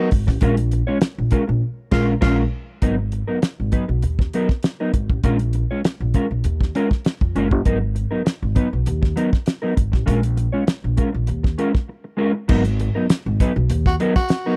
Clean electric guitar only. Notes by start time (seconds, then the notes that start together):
Already playing: A#4
0.00 F#3 B3 D#4
0.12 muted clean electric guitar stroke
0.27 muted clean electric guitar stroke
0.41 G#3 C#4 F4 A#4
0.58 muted clean electric guitar stroke
0.72 muted clean electric guitar stroke
0.87 G#3 C#4 F4 C#5
1.02 muted clean electric guitar stroke
1.31 G#3 C#4 F4 A#4
1.48 muted clean electric guitar stroke
1.91 G#3 C#4 F4 A#4
2.21 G#3 C#4 F4 A#4
2.82 F#3 B3 D#4 A#4
2.98 muted clean electric guitar stroke
3.12 muted clean electric guitar stroke
3.28 F#3 B3 D#4 A#4
3.42 muted clean electric guitar stroke
3.72 F#3 B3 D#4 B4
3.88 muted clean electric guitar stroke
4.03 muted clean electric guitar stroke
4.20 muted clean electric guitar stroke
4.34 F#3 B3 D#4 A#4
4.51 muted clean electric guitar stroke
4.64 muted clean electric guitar stroke
4.80 F#3 B3 D#4 A#4
4.93 muted clean electric guitar stroke
5.10 muted clean electric guitar stroke
5.24 G#3 C#4 F4 A#4
5.40 muted clean electric guitar stroke
5.54 muted clean electric guitar stroke
5.71 G#3 C#4 F4 C#5
5.85 muted clean electric guitar stroke
6.15 G#3 C#4 F4 A#4
6.31 muted clean electric guitar stroke
6.45 muted clean electric guitar stroke
6.61 muted clean electric guitar stroke
6.75 G#3 C#4 F4 A#4
6.91 muted clean electric guitar stroke
7.05 muted clean electric guitar stroke
7.22 muted clean electric guitar stroke
7.36 G#3 C#4 F4 A#4
7.65 F#3 B3 D#4 A#4
7.81 muted clean electric guitar stroke
7.95 muted clean electric guitar stroke
8.11 F#3 B3 D#4 A#4
8.25 muted clean electric guitar stroke
8.55 F#3 B3 D#4 B4
8.74 muted clean electric guitar stroke
8.87 muted clean electric guitar stroke
9.02 muted clean electric guitar stroke
9.16 F#3 B3 D#4 A#4
9.47 muted clean electric guitar stroke
9.62 F#3 B3 D#4 A#4
9.76 muted clean electric guitar stroke
9.92 muted clean electric guitar stroke
10.06 G#3 C#4 F4 A#4
10.23 muted clean electric guitar stroke
10.37 muted clean electric guitar stroke
10.52 G#3 C#4 F4 C#5
10.97 G#3 C#4 F4 A#4
11.13 muted clean electric guitar stroke
11.27 muted clean electric guitar stroke
11.43 muted clean electric guitar stroke
11.58 G#3 C#4 F4 A#4
11.74 muted clean electric guitar stroke
11.89 muted clean electric guitar stroke
12.04 muted clean electric guitar stroke
12.17 G#3 C#4 F4 A#4
12.34 muted clean electric guitar stroke
12.48 F#3 B3 D#4 A#4
12.65 muted clean electric guitar stroke
12.80 muted clean electric guitar stroke
12.95 F#3 B3 D#4 A#4
13.11 muted clean electric guitar stroke
13.41 F#3 B3 D#4 B4
13.56 muted clean electric guitar stroke
13.70 muted clean electric guitar stroke
13.86 muted clean electric guitar stroke
14.00 F#3 B3 D#4 A#4
14.16 muted clean electric guitar stroke
14.30 muted clean electric guitar stroke
14.46 F#3 B3 D#4 A#4